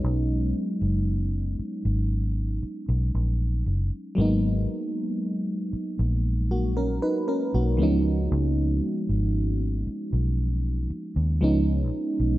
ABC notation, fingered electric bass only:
X:1
M:4/4
L:1/16
Q:1/4=58
K:C#dor
V:1 name="Fingered electric bass" clef=bass
B,,,2 z F,,,3 z G,,,3 z B,,, A,,,2 F,,, z | G,,,2 z4 z A,,,4 z2 B,,, C,,2 | C,,2 z G,,,3 z B,,,3 z D,, C,,2 z B,,, |]